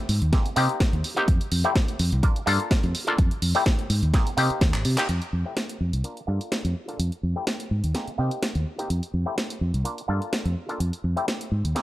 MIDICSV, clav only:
0, 0, Header, 1, 2, 480
1, 0, Start_track
1, 0, Key_signature, -1, "major"
1, 0, Tempo, 476190
1, 1290, Time_signature, 4, 2, 24, 8
1, 11915, End_track
2, 0, Start_track
2, 0, Title_t, "Clav"
2, 0, Program_c, 0, 7
2, 328, Note_on_c, 0, 58, 77
2, 331, Note_on_c, 0, 60, 71
2, 334, Note_on_c, 0, 63, 72
2, 336, Note_on_c, 0, 68, 86
2, 484, Note_off_c, 0, 58, 0
2, 486, Note_off_c, 0, 60, 0
2, 487, Note_off_c, 0, 63, 0
2, 488, Note_off_c, 0, 68, 0
2, 564, Note_on_c, 0, 58, 99
2, 568, Note_on_c, 0, 60, 90
2, 575, Note_on_c, 0, 63, 91
2, 579, Note_on_c, 0, 67, 107
2, 1145, Note_off_c, 0, 58, 0
2, 1147, Note_off_c, 0, 60, 0
2, 1150, Note_off_c, 0, 63, 0
2, 1152, Note_off_c, 0, 67, 0
2, 1174, Note_on_c, 0, 58, 95
2, 1177, Note_on_c, 0, 60, 87
2, 1180, Note_on_c, 0, 63, 86
2, 1183, Note_on_c, 0, 67, 105
2, 1274, Note_off_c, 0, 58, 0
2, 1276, Note_off_c, 0, 60, 0
2, 1277, Note_off_c, 0, 63, 0
2, 1279, Note_off_c, 0, 67, 0
2, 1655, Note_on_c, 0, 57, 78
2, 1657, Note_on_c, 0, 60, 69
2, 1661, Note_on_c, 0, 64, 70
2, 1663, Note_on_c, 0, 67, 85
2, 1743, Note_off_c, 0, 57, 0
2, 1744, Note_off_c, 0, 60, 0
2, 1746, Note_off_c, 0, 64, 0
2, 1747, Note_off_c, 0, 67, 0
2, 2246, Note_on_c, 0, 58, 78
2, 2248, Note_on_c, 0, 62, 70
2, 2253, Note_on_c, 0, 65, 73
2, 2254, Note_on_c, 0, 70, 88
2, 2403, Note_off_c, 0, 58, 0
2, 2404, Note_off_c, 0, 62, 0
2, 2406, Note_off_c, 0, 65, 0
2, 2407, Note_off_c, 0, 70, 0
2, 2480, Note_on_c, 0, 58, 98
2, 2485, Note_on_c, 0, 62, 92
2, 2490, Note_on_c, 0, 65, 93
2, 2496, Note_on_c, 0, 69, 110
2, 3063, Note_off_c, 0, 58, 0
2, 3066, Note_off_c, 0, 62, 0
2, 3068, Note_off_c, 0, 65, 0
2, 3071, Note_off_c, 0, 69, 0
2, 3095, Note_on_c, 0, 58, 95
2, 3099, Note_on_c, 0, 62, 85
2, 3101, Note_on_c, 0, 65, 87
2, 3104, Note_on_c, 0, 69, 105
2, 3195, Note_off_c, 0, 58, 0
2, 3197, Note_off_c, 0, 62, 0
2, 3198, Note_off_c, 0, 65, 0
2, 3200, Note_off_c, 0, 69, 0
2, 3577, Note_on_c, 0, 57, 77
2, 3578, Note_on_c, 0, 60, 71
2, 3582, Note_on_c, 0, 64, 73
2, 3584, Note_on_c, 0, 67, 85
2, 3664, Note_off_c, 0, 57, 0
2, 3665, Note_off_c, 0, 60, 0
2, 3667, Note_off_c, 0, 64, 0
2, 3667, Note_off_c, 0, 67, 0
2, 4168, Note_on_c, 0, 58, 80
2, 4170, Note_on_c, 0, 60, 72
2, 4172, Note_on_c, 0, 63, 72
2, 4176, Note_on_c, 0, 68, 86
2, 4324, Note_off_c, 0, 58, 0
2, 4325, Note_off_c, 0, 60, 0
2, 4326, Note_off_c, 0, 63, 0
2, 4328, Note_off_c, 0, 68, 0
2, 4405, Note_on_c, 0, 58, 100
2, 4409, Note_on_c, 0, 60, 92
2, 4416, Note_on_c, 0, 63, 88
2, 4419, Note_on_c, 0, 67, 109
2, 4985, Note_off_c, 0, 58, 0
2, 4988, Note_off_c, 0, 60, 0
2, 4991, Note_off_c, 0, 63, 0
2, 4993, Note_off_c, 0, 67, 0
2, 5017, Note_on_c, 0, 58, 93
2, 5019, Note_on_c, 0, 60, 86
2, 5020, Note_on_c, 0, 63, 88
2, 5024, Note_on_c, 0, 67, 106
2, 5116, Note_off_c, 0, 58, 0
2, 5117, Note_off_c, 0, 60, 0
2, 5118, Note_off_c, 0, 63, 0
2, 5119, Note_off_c, 0, 67, 0
2, 5497, Note_on_c, 0, 57, 69
2, 5499, Note_on_c, 0, 60, 64
2, 5503, Note_on_c, 0, 64, 64
2, 5505, Note_on_c, 0, 67, 76
2, 5584, Note_off_c, 0, 57, 0
2, 5585, Note_off_c, 0, 60, 0
2, 5587, Note_off_c, 0, 64, 0
2, 5588, Note_off_c, 0, 67, 0
2, 6087, Note_on_c, 0, 58, 75
2, 6090, Note_on_c, 0, 62, 68
2, 6091, Note_on_c, 0, 65, 66
2, 6093, Note_on_c, 0, 70, 81
2, 6244, Note_off_c, 0, 58, 0
2, 6245, Note_off_c, 0, 62, 0
2, 6246, Note_off_c, 0, 65, 0
2, 6247, Note_off_c, 0, 70, 0
2, 6320, Note_on_c, 0, 58, 91
2, 6326, Note_on_c, 0, 62, 83
2, 6331, Note_on_c, 0, 65, 82
2, 6337, Note_on_c, 0, 69, 100
2, 6903, Note_off_c, 0, 58, 0
2, 6906, Note_off_c, 0, 62, 0
2, 6909, Note_off_c, 0, 65, 0
2, 6911, Note_off_c, 0, 69, 0
2, 6934, Note_on_c, 0, 58, 88
2, 6938, Note_on_c, 0, 62, 79
2, 6940, Note_on_c, 0, 65, 80
2, 6943, Note_on_c, 0, 69, 95
2, 7035, Note_off_c, 0, 58, 0
2, 7037, Note_off_c, 0, 62, 0
2, 7037, Note_off_c, 0, 65, 0
2, 7039, Note_off_c, 0, 69, 0
2, 7416, Note_on_c, 0, 57, 72
2, 7418, Note_on_c, 0, 60, 64
2, 7421, Note_on_c, 0, 64, 65
2, 7423, Note_on_c, 0, 67, 79
2, 7504, Note_off_c, 0, 57, 0
2, 7505, Note_off_c, 0, 60, 0
2, 7506, Note_off_c, 0, 64, 0
2, 7507, Note_off_c, 0, 67, 0
2, 8006, Note_on_c, 0, 58, 72
2, 8009, Note_on_c, 0, 60, 68
2, 8011, Note_on_c, 0, 63, 68
2, 8014, Note_on_c, 0, 68, 79
2, 8163, Note_off_c, 0, 58, 0
2, 8165, Note_off_c, 0, 60, 0
2, 8165, Note_off_c, 0, 63, 0
2, 8167, Note_off_c, 0, 68, 0
2, 8244, Note_on_c, 0, 58, 91
2, 8250, Note_on_c, 0, 60, 83
2, 8257, Note_on_c, 0, 63, 84
2, 8260, Note_on_c, 0, 67, 100
2, 8825, Note_off_c, 0, 58, 0
2, 8828, Note_off_c, 0, 60, 0
2, 8831, Note_off_c, 0, 63, 0
2, 8833, Note_off_c, 0, 67, 0
2, 8854, Note_on_c, 0, 58, 89
2, 8856, Note_on_c, 0, 60, 81
2, 8858, Note_on_c, 0, 63, 81
2, 8863, Note_on_c, 0, 67, 98
2, 8955, Note_off_c, 0, 58, 0
2, 8956, Note_off_c, 0, 60, 0
2, 8957, Note_off_c, 0, 63, 0
2, 8959, Note_off_c, 0, 67, 0
2, 9332, Note_on_c, 0, 57, 73
2, 9334, Note_on_c, 0, 60, 68
2, 9336, Note_on_c, 0, 64, 67
2, 9339, Note_on_c, 0, 67, 80
2, 9421, Note_off_c, 0, 57, 0
2, 9422, Note_off_c, 0, 60, 0
2, 9424, Note_off_c, 0, 64, 0
2, 9425, Note_off_c, 0, 67, 0
2, 9923, Note_on_c, 0, 58, 76
2, 9926, Note_on_c, 0, 62, 70
2, 9929, Note_on_c, 0, 65, 68
2, 9929, Note_on_c, 0, 70, 83
2, 10081, Note_off_c, 0, 58, 0
2, 10083, Note_off_c, 0, 62, 0
2, 10085, Note_off_c, 0, 65, 0
2, 10085, Note_off_c, 0, 70, 0
2, 10159, Note_on_c, 0, 58, 94
2, 10164, Note_on_c, 0, 62, 82
2, 10169, Note_on_c, 0, 65, 84
2, 10175, Note_on_c, 0, 69, 105
2, 10742, Note_off_c, 0, 58, 0
2, 10745, Note_off_c, 0, 62, 0
2, 10747, Note_off_c, 0, 65, 0
2, 10750, Note_off_c, 0, 69, 0
2, 10772, Note_on_c, 0, 58, 88
2, 10774, Note_on_c, 0, 62, 83
2, 10775, Note_on_c, 0, 65, 81
2, 10780, Note_on_c, 0, 69, 100
2, 10873, Note_off_c, 0, 58, 0
2, 10875, Note_off_c, 0, 62, 0
2, 10875, Note_off_c, 0, 65, 0
2, 10878, Note_off_c, 0, 69, 0
2, 11252, Note_on_c, 0, 57, 73
2, 11254, Note_on_c, 0, 60, 65
2, 11257, Note_on_c, 0, 64, 66
2, 11260, Note_on_c, 0, 67, 80
2, 11342, Note_off_c, 0, 57, 0
2, 11343, Note_off_c, 0, 60, 0
2, 11344, Note_off_c, 0, 64, 0
2, 11346, Note_off_c, 0, 67, 0
2, 11844, Note_on_c, 0, 58, 76
2, 11848, Note_on_c, 0, 60, 71
2, 11849, Note_on_c, 0, 63, 71
2, 11852, Note_on_c, 0, 68, 83
2, 11915, Note_off_c, 0, 58, 0
2, 11915, Note_off_c, 0, 60, 0
2, 11915, Note_off_c, 0, 63, 0
2, 11915, Note_off_c, 0, 68, 0
2, 11915, End_track
0, 0, End_of_file